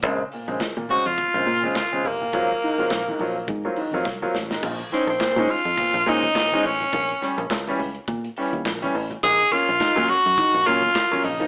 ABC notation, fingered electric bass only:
X:1
M:4/4
L:1/16
Q:"Swing 16ths" 1/4=104
K:Bbm
V:1 name="Fingered electric bass" clef=bass
B,,,2 z B,,, z B,, z F,, z B,,, B,,2 z2 =G,,,2 | A,,,2 z A,,, B,,,2 B,,,2 A,,2 z F,, C,,2 =A,,,2 | B,,,2 z B,,, z B,, z F,, z B,,, B,,2 z2 =A,,,2 | B,,,2 z B,,, D,,2 D,,2 B,,2 z E,, B,,,2 =A,,,2 |
B,,,2 z B,,, z B,, z G,, z B,,, B,,2 z2 B,,,2 |]